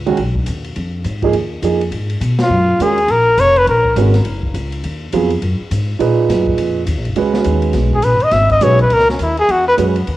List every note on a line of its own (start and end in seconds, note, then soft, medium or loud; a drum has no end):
0.00 0.17 C#2 medium
0.06 0.16 D#3 medium
0.06 0.16 G#3 medium
0.06 0.17 C#4 medium
0.06 0.17 F#4 medium
0.06 ride soft
0.17 0.46 B1 medium
0.17 ride medium
0.35 kick medium
0.46 0.75 D#2 medium
0.46 hi-hat pedal soft
0.46 ride medium
0.64 ride soft
0.76 1.04 F2 medium
0.76 ride soft
1.04 1.33 G#2 medium
1.04 hi-hat pedal medium
1.04 ride medium
1.22 1.33 F3 medium
1.22 1.33 A#3 medium
1.22 1.33 D#4 medium
1.22 1.34 G#4 medium
1.22 kick soft
1.22 ride soft
1.33 1.62 D#2 medium
1.33 ride medium
1.62 1.91 F2 medium
1.62 1.79 F3 medium
1.62 1.79 A#3 soft
1.62 1.80 D#4 soft
1.62 1.80 G#4 medium
1.62 hi-hat pedal medium
1.62 ride medium
1.81 ride soft
1.92 2.20 G#2 medium
1.92 ride medium
2.10 ride soft
2.21 2.49 B2 medium
2.21 hi-hat pedal medium
2.21 ride medium
2.39 2.84 F4 medium
2.39 snare medium
2.39 ride medium
2.50 2.78 F#2 medium
2.79 3.07 D#2 medium
2.79 2.96 G#3 soft
2.79 2.96 C#4 soft
2.79 2.97 F#4 soft
2.79 3.12 G#4 medium
2.79 2.97 A#4 medium
2.79 hi-hat pedal soft
2.79 ride medium
2.98 ride soft
3.08 3.37 A#1 medium
3.08 3.41 A#4 medium
3.08 ride medium
3.37 3.66 F1 medium
3.37 3.59 C#5 medium
3.37 hi-hat pedal medium
3.37 ride medium
3.56 3.68 B4 medium
3.56 ride soft
3.67 3.95 A#1 medium
3.67 3.95 A#4 medium
3.67 ride medium
3.85 kick soft
3.96 4.24 G#1 medium
3.96 4.12 G#3 medium
3.96 4.13 C#4 soft
3.96 4.13 F#4 medium
3.96 4.13 A#4 medium
3.96 hi-hat pedal medium
3.96 ride medium
4.14 snare soft
4.14 ride soft
4.25 4.53 F#1 medium
4.25 ride medium
4.43 kick soft
4.54 4.82 C#2 medium
4.54 hi-hat pedal soft
4.54 ride medium
4.72 ride soft
4.84 5.12 D#2 medium
4.84 ride medium
5.12 5.41 F2 loud
5.12 5.29 F#3 medium
5.12 5.29 B3 medium
5.12 5.29 F4 medium
5.12 5.30 G#4 medium
5.12 hi-hat pedal soft
5.12 ride medium
5.30 ride soft
5.42 5.58 F#2 medium
5.42 ride medium
5.60 muted upright bass stroke soft
5.71 5.99 G#2 medium
5.71 hi-hat pedal medium
5.71 ride medium
5.99 6.80 A#2 medium
5.99 6.28 A#2 medium
5.99 6.80 D#4 medium
5.99 6.81 G#4 medium
5.99 6.81 B4 medium
5.99 ride medium
6.29 6.57 F#2 medium
6.29 snare soft
6.29 hi-hat pedal medium
6.29 ride medium
6.47 kick medium
6.58 6.86 F2 medium
6.58 ride medium
6.87 6.97 D#2 medium
6.87 hi-hat pedal soft
6.87 ride medium
6.97 7.06 A#1 medium
7.05 7.15 F#1 medium
7.05 ride soft
7.16 7.45 C#2 medium
7.16 7.97 G#3 medium
7.16 7.97 C#4 medium
7.16 7.97 F#4 medium
7.16 7.98 B4 medium
7.16 ride medium
7.34 snare medium
7.44 7.74 D#2 medium
7.44 hi-hat pedal medium
7.44 ride medium
7.62 ride soft
7.73 8.02 B1 medium
7.73 snare soft
7.73 ride medium
7.92 8.06 G#4 medium
7.92 kick medium
8.02 8.12 A#1 medium
8.02 8.26 B4 medium
8.02 hi-hat pedal medium
8.02 ride medium
8.12 8.22 G#1 medium
8.20 8.31 E1 medium
8.20 8.34 D#5 medium
8.20 ride soft
8.31 8.60 G#1 medium
8.31 8.50 E5 medium
8.31 snare soft
8.31 ride medium
8.50 8.64 D#5 medium
8.50 kick soft
8.50 ride soft
8.61 8.90 B1 medium
8.61 8.78 G#3 soft
8.61 8.78 C#4 soft
8.61 8.78 F#4 medium
8.61 8.79 B4 medium
8.61 8.80 C#5 medium
8.61 hi-hat pedal medium
8.61 ride medium
8.79 8.95 B4 medium
8.79 ride soft
8.90 9.19 C#2 medium
8.90 9.10 A#4 medium
8.90 ride medium
9.00 snare soft
9.09 9.23 C#4 soft
9.09 snare soft
9.19 9.48 D#2 medium
9.19 9.39 E4 medium
9.19 hi-hat pedal medium
9.19 ride medium
9.37 9.53 G#4 medium
9.37 ride soft
9.49 9.77 E2 medium
9.49 9.68 F#4 medium
9.49 ride medium
9.68 9.75 B4 medium
9.78 10.06 F#2 medium
9.78 9.94 G#3 medium
9.78 9.94 C#4 medium
9.78 9.94 F#4 soft
9.78 9.95 B4 medium
9.78 hi-hat pedal medium
9.78 ride medium
9.96 ride soft
10.07 10.17 D#2 medium
10.07 ride soft